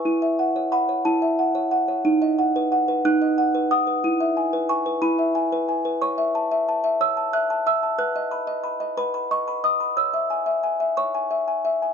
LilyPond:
\new Staff \with { instrumentName = "Music box" } { \time 6/8 \key b \mixolydian \tempo 4. = 60 << { cis'''4 b''8 a''4. | r4. fis'''4 dis'''8~ | dis'''4 cis'''8 b''4. | cis'''4. e'''8 fis'''8 e'''8 |
fis'''4. b''8 cis'''8 dis'''8 | e'''4. cis'''4. | } \\ { e'16 e''16 fis''16 cis''16 fis''16 cis''16 e'16 e''16 fis''16 cis''16 fis''16 cis''16 | dis'16 dis''16 fis''16 b'16 fis''16 b'16 dis'16 dis''16 fis''16 b'16 fis''16 b'16 | e'16 e''16 gis''16 b'16 gis''16 b'16 e'16 e''16 gis''16 b'16 gis''16 b'16 | cis''16 e''16 a''16 e''16 a''16 e''16 cis''16 a''16 e''16 a''16 e''16 a''16 |
b'16 dis''16 b''16 dis''16 b''16 dis''16 b'16 b''16 dis''16 b''16 dis''16 b''16 | cis''16 e''16 gis''16 e''16 gis''16 e''16 cis''16 gis''16 e''16 gis''16 e''16 gis''16 | } >> }